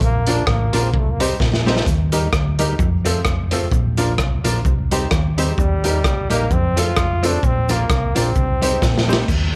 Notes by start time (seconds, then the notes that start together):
0.01 A#1 A#3, kick, hi-hat pedal
0.27 F3 A#3 D4 F4 A#4, closed hi-hat
0.47 A1 A#3, kick, cross-stick
0.73 A#1 F3 A#3 D4 F4 A#4, closed hi-hat
0.83 C4
0.91 C2 A#3 G4 C5, muted hollow-body jazz guitar stroke, kick
0.99 A3
1.11 A#3
1.20 G3 C4 D#4 G4 C5, closed hi-hat
1.40 A#1, kick, snare
1.53 snare
1.66 G3 C4 D#4 G4 C5, snare
1.76 snare
1.86 D#2, kick, hi-hat pedal, cabasa
2.12 G3 A#3 D#4 G4 A#4, closed hi-hat, cabasa
2.33 D2, kick, cross-stick, cabasa
2.58 G3 A#3 D#4 G4 A#4, closed hi-hat, cabasa
2.79 F2 F4 A4, kick, cabasa
3.05 F3 A3 C4 F4 A4, closed hi-hat, cabasa
3.25 F1, kick, cross-stick, cabasa
3.51 F3 A3 C4 F4 A4, closed hi-hat, cabasa
3.72 A#1, kick, cabasa
3.97 F3 A#3 D4 F4 A#4, closed hi-hat, cabasa
4.18 C2, kick, cross-stick, cabasa
4.44 A#1 F3 A#3 D4 F4 A#4, closed hi-hat, cabasa
4.65 C2 G4 C5, muted hollow-body jazz guitar stroke, kick, cabasa
4.91 G3 C4 D#4 G4 C5, closed hi-hat, cabasa
5.11 D#2, kick, cross-stick, cabasa
5.38 G3 C4 D#4 G4 C5, closed hi-hat, cabasa
5.58 D#2 G3, kick, cabasa
5.84 G3 A#3 D#4 G4 A#4, closed hi-hat, cabasa
6.04 C2, kick, cross-stick, cabasa
6.30 A#1 G3 A#3 D#4 G4 A#4, closed hi-hat, cabasa
6.50 F2 C4 F4 A4, muted hollow-body jazz guitar stroke, kick, cabasa
6.76 F3 A3 C4 F4 A4, closed hi-hat, cabasa
6.97 F1, kick, cross-stick, cabasa
7.23 F3 A3 C4 D4 F4 A4, closed hi-hat, cabasa
7.43 A#1 C4, kick, cabasa
7.69 F3 A#3 D4 F4 A#4, closed hi-hat, cabasa
7.74 A#3
7.90 C2, kick, cross-stick, cabasa
8.15 A#1 F3 A#3 C4 D4 F4 A#4, closed hi-hat, cabasa
8.35 C2 G4 C5, kick, cabasa
8.62 G3 C4 D#4 G4 C5, closed hi-hat, cabasa
8.82 A#1, kick, snare, cabasa
8.97 snare
9.08 G3 C4 D#4 G4 C5, cabasa
9.13 snare
9.28 D#2, kick, crash, cabasa